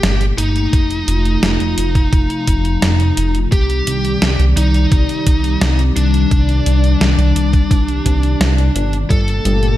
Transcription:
Already playing: analog synth pad A#2 A3 A#3 G4, lead electric guitar G4
0.03 analog synth bass G1, snare, closed hi-hat
0.21 closed hi-hat
0.38 analog synth bass G1, lead electric guitar D#4, closed hi-hat
0.56 closed hi-hat
0.73 analog synth bass F1, analog synth pad C3 F3 A3 F4, kick, closed hi-hat
0.91 closed hi-hat
1.08 analog synth bass F1, closed hi-hat
1.25 closed hi-hat
1.43 analog synth bass F1, snare, closed hi-hat
1.60 analog synth bass F1, closed hi-hat
1.78 analog synth bass F1, closed hi-hat
1.95 kick, closed hi-hat
2.13 analog synth bass F1, kick, closed hi-hat
2.30 closed hi-hat
2.47 analog synth bass F1, kick, closed hi-hat
2.65 closed hi-hat
2.82 analog synth bass F1, snare, closed hi-hat
3.00 closed hi-hat
3.17 analog synth bass F1, closed hi-hat
3.35 closed hi-hat
3.52 analog synth bass C2, analog synth pad D#3 G3 D5, lead electric guitar G4, kick, closed hi-hat
3.70 closed hi-hat
3.87 analog synth bass C2, closed hi-hat
4.05 closed hi-hat
4.22 analog synth bass C2, snare, closed hi-hat
4.39 analog synth bass C2, closed hi-hat
4.57 analog synth bass C2, lead electric guitar D#4, closed hi-hat
4.74 closed hi-hat
4.92 analog synth bass C2, kick, closed hi-hat
5.09 closed hi-hat
5.27 analog synth bass C2, kick, closed hi-hat
5.44 closed hi-hat
5.61 analog synth bass C2, snare, closed hi-hat
5.79 closed hi-hat
5.96 analog synth bass C2, lead electric guitar D4, closed hi-hat
6.14 closed hi-hat
6.31 analog synth bass C2, kick, closed hi-hat
6.49 closed hi-hat
6.66 analog synth bass C2, closed hi-hat
6.84 closed hi-hat
7.01 analog synth bass C2, snare, closed hi-hat
7.18 analog synth bass C2, closed hi-hat
7.36 analog synth bass C2, closed hi-hat
7.53 kick, closed hi-hat
7.71 analog synth bass C2, kick, closed hi-hat
7.88 closed hi-hat
8.06 analog synth bass C2, kick, closed hi-hat
8.23 closed hi-hat
8.40 analog synth bass C2, snare, closed hi-hat
8.58 closed hi-hat
8.75 analog synth bass G1, closed hi-hat
8.93 closed hi-hat
9.10 analog synth bass G1, analog synth pad A#2 A3 A#3 G4, synth arpeggio sound G3, lead electric guitar A4, kick, closed hi-hat
9.28 closed hi-hat
9.45 analog synth bass G1, synth arpeggio sound G3, closed hi-hat
9.63 closed hi-hat

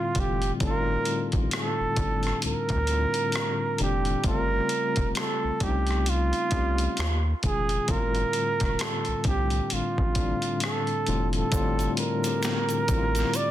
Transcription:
Already playing: tine electric piano A2 D3 G3 C4 E4 F4, flugelhorn F4
0.15 analog synth bass F1, tine electric piano A2 D3 G3 C4 F4, kick, closed hi-hat
0.20 flugelhorn G4
0.42 closed hi-hat
0.60 analog synth bass G1, tine electric piano A2 D3 G3 C4 D#4, kick, closed hi-hat
0.65 flugelhorn A#4
0.71 tine electric piano F4
1.05 closed hi-hat
1.32 analog synth bass A1, kick, closed hi-hat
1.51 flugelhorn A4, cross-stick, closed hi-hat
1.80 analog synth bass G1
1.96 analog synth bass G1, tine electric piano A2 D3 G3 C4 D4, kick, closed hi-hat
2.23 cross-stick, closed hi-hat
2.42 analog synth bass D2, closed hi-hat
2.47 flugelhorn A#4
2.69 analog synth bass D2, kick, closed hi-hat
2.87 tine electric piano A2 D3 G3 C4 F4, closed hi-hat
3.14 closed hi-hat
3.32 cross-stick, closed hi-hat
3.78 analog synth bass F1, tine electric piano A2 D3 G3 C4 D4, closed hi-hat
3.82 flugelhorn G4
4.05 closed hi-hat
4.24 analog synth bass G1, tine electric piano C#3 G3 A3 C4 F4, kick, closed hi-hat
4.28 flugelhorn A#4
4.69 closed hi-hat
4.96 analog synth bass F1, kick, closed hi-hat
5.15 flugelhorn A4, cross-stick, closed hi-hat
5.44 analog synth bass C2
5.60 analog synth bass C2, tine electric piano G3 A3 C4 C#4 D#4, flugelhorn G4, kick, closed hi-hat
5.87 cross-stick, closed hi-hat
6.06 flugelhorn F4, closed hi-hat
6.33 closed hi-hat
6.51 analog synth bass C2, tine electric piano G3 A3 C4 C#4 G4, kick, closed hi-hat
6.78 closed hi-hat
6.97 analog synth bass D#2, cross-stick, closed hi-hat
7.43 analog synth bass F1, tine electric piano A#2 D#3 G#3 C#4 F4, flugelhorn G#4, kick, closed hi-hat
7.69 closed hi-hat
7.88 analog synth bass G1, tine electric piano A2 D3 G3 C4 F4, flugelhorn A#4, kick, closed hi-hat
8.15 closed hi-hat
8.33 closed hi-hat
8.60 analog synth bass F1, kick, cross-stick, closed hi-hat
8.79 flugelhorn A4, cross-stick, closed hi-hat
9.05 analog synth bass C2, closed hi-hat
9.24 analog synth bass C2, tine electric piano A2 D3 G3 C4 D4, flugelhorn G4, kick, closed hi-hat
9.50 closed hi-hat
9.70 analog synth bass A1, flugelhorn F4, closed hi-hat
9.98 analog synth bass A1, kick
10.15 tine electric piano A2 D3 G3 C4 D4, kick, closed hi-hat
10.42 closed hi-hat
10.60 flugelhorn A4, cross-stick, closed hi-hat
10.87 closed hi-hat
11.06 analog synth bass F1, tine electric piano A2 D3 G3 C4 F4, closed hi-hat
11.33 flugelhorn A4, closed hi-hat
11.52 analog synth bass G1, tine electric piano A2 D3 G3 C4 F4, kick, closed hi-hat, shaker
11.79 closed hi-hat, shaker
11.97 flugelhorn A#4, closed hi-hat
12.24 tine electric piano A2 D3 G3 C4 G4, closed hi-hat, shaker
12.43 finger snap, snare, closed hi-hat, shaker
12.45 finger snap
12.69 closed hi-hat, shaker
12.88 analog synth bass A1, tine electric piano A2 D3 G3 C4 E4, kick, closed hi-hat, shaker
12.97 tine electric piano F4
13.15 snare, closed hi-hat, shaker
13.34 flugelhorn D5, closed hi-hat, shaker

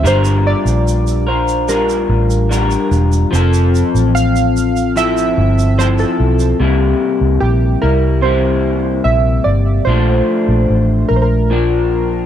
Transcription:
0.03 fingered electric bass G1, clean electric guitar G3 D4 F4 A#4, synth keys C5, shaker
0.25 shaker
0.47 synth keys D5
0.65 fingered electric bass A#1, shaker
0.88 shaker
1.07 shaker
1.27 clean electric guitar D4 F4 A#4, synth keys C5
1.48 shaker
1.68 clean electric guitar G3 D4 F4 A#4, synth keys A#4, shaker
1.89 shaker
2.09 fingered electric bass A1
2.30 shaker
2.49 clean electric guitar G3 D4 F4 A#4, shaker
2.71 shaker
2.91 fingered electric bass E1, shaker
3.12 shaker
3.31 fingered electric bass F1, clean electric guitar F3 C4, shaker
3.35 clean electric guitar A4
3.53 shaker
3.75 shaker
3.95 fingered electric bass A1, shaker
4.15 synth keys F5, shaker
4.36 shaker
4.57 shaker
4.77 shaker
4.96 clean electric guitar F3 C4 E4 A4, synth keys E5, shaker
5.18 shaker
5.38 fingered electric bass G1
5.59 shaker
5.78 clean electric guitar F3 C4 E4 A4, synth keys C5, shaker
5.98 synth keys A4, shaker
6.20 fingered electric bass B1
6.39 shaker
6.60 fingered electric bass C2, clean electric guitar C3 G3 A#3 E4
7.21 fingered electric bass C2
7.40 fingered electric bass A#1, synth keys G4
7.82 fingered electric bass C2, clean electric guitar G3 A#3 E4, synth keys A#4
8.21 clean electric guitar C3 G3 A#3, synth keys C5
8.26 clean electric guitar E4
9.04 fingered electric bass A#1, synth keys E5
9.44 fingered electric bass G1, synth keys D5
9.85 fingered electric bass A#1, clean electric guitar F3 A3, synth keys C5
9.90 clean electric guitar D4
10.48 fingered electric bass A#1
10.70 fingered electric bass A1
11.08 fingered electric bass A#1, synth keys A#4
11.16 synth keys C5
11.22 synth keys A#4
11.50 clean electric guitar A#2 F3 D4

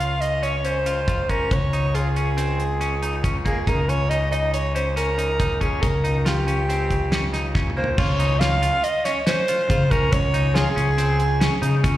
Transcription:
Already playing: fingered electric bass C#2, soprano saxophone F5
0.00 clean electric guitar F4, closed hi-hat
0.21 soprano saxophone D#5, closed hi-hat
0.43 clean electric guitar C#4, soprano saxophone C#5, closed hi-hat
0.65 clean electric guitar C#4, soprano saxophone C5, closed hi-hat
0.86 clean electric guitar F4, closed hi-hat
1.08 clean electric guitar F4, kick, closed hi-hat
1.29 clean electric guitar C#4, soprano saxophone A#4, kick, closed hi-hat
1.51 fingered electric bass C#2, soprano saxophone C#5, kick, closed hi-hat
1.73 clean electric guitar D#4, closed hi-hat
1.95 clean electric guitar F4, soprano saxophone G#4, closed hi-hat
2.16 clean electric guitar C#4, closed hi-hat
2.37 clean electric guitar C4, closed hi-hat
2.60 closed hi-hat
2.81 clean electric guitar C#4, closed hi-hat
3.02 clean electric guitar D#4, closed hi-hat
3.24 clean electric guitar C#4, kick, closed hi-hat
3.45 clean electric guitar A#3, soprano saxophone G#4, kick, closed hi-hat
3.67 fingered electric bass C#2, clean electric guitar D#4, soprano saxophone A#4, kick, closed hi-hat
3.89 clean electric guitar C#4, soprano saxophone C#5, closed hi-hat
4.10 clean electric guitar D#4, soprano saxophone D#5, closed hi-hat
4.32 clean electric guitar D#4, soprano saxophone D#5, closed hi-hat
4.54 soprano saxophone C#5, closed hi-hat
4.75 clean electric guitar C#4, soprano saxophone C5, closed hi-hat
4.96 clean electric guitar C#4, soprano saxophone A#4, closed hi-hat
5.18 clean electric guitar D#4, closed hi-hat
5.40 clean electric guitar D#4, kick, closed hi-hat
5.61 clean electric guitar C#4, soprano saxophone G#4, kick, closed hi-hat
5.82 fingered electric bass C#2, soprano saxophone A#4, kick, closed hi-hat
6.04 clean electric guitar D#4, closed hi-hat
6.25 clean electric guitar F4, soprano saxophone G4, snare, closed hi-hat
6.47 clean electric guitar C#4, closed hi-hat
6.69 clean electric guitar C4, closed hi-hat
6.91 kick, closed hi-hat
7.12 clean electric guitar C#4, snare, closed hi-hat
7.33 clean electric guitar D#4, snare, closed hi-hat
7.55 clean electric guitar C#4, kick, snare
7.70 mid tom
7.77 clean electric guitar A#3, soprano saxophone C5
7.84 floor tom
7.98 fingered electric bass C#2, clean electric guitar F4, soprano saxophone C#5, kick, crash
8.19 clean electric guitar D#4, closed hi-hat
8.40 clean electric guitar F4, soprano saxophone F5, snare, closed hi-hat
8.62 clean electric guitar F4, closed hi-hat
8.84 soprano saxophone D#5, closed hi-hat
9.05 clean electric guitar C#4, soprano saxophone C#5, snare, closed hi-hat
9.26 clean electric guitar C#4, soprano saxophone C5, snare, closed hi-hat
9.48 clean electric guitar F4, closed hi-hat
9.70 fingered electric bass C#3, clean electric guitar F4, kick, closed hi-hat
9.91 fingered electric bass C#2, clean electric guitar C#4, soprano saxophone A#4, kick, closed hi-hat
10.12 fingered electric bass C#2, soprano saxophone C#5, kick, closed hi-hat
10.34 clean electric guitar D#4, closed hi-hat
10.55 clean electric guitar F4, soprano saxophone G#4, snare, closed hi-hat
10.76 fingered electric bass C#2, clean electric guitar C#4, closed hi-hat
10.98 clean electric guitar C4, closed hi-hat
11.20 closed hi-hat
11.40 clean electric guitar C#4, snare, closed hi-hat
11.62 fingered electric bass C#3, clean electric guitar D#4, closed hi-hat
11.84 fingered electric bass C#2, clean electric guitar C#4, kick, closed hi-hat

